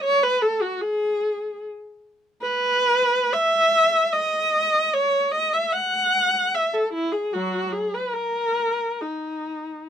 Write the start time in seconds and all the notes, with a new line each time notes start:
0.04 C#5
0.23 B4
0.42 A4
0.62 F#4
0.81 G#4
2.42 B4
3.33 E5
4.13 D#5
4.93 C#5
5.32 D#5
5.53 E5
5.72 F#5
6.54 E5
6.74 A4
6.93 E4
7.12 G#4
7.32 F#3 F#4
7.72 G#4
7.94 B4
8.14 A#4
9.01 D#4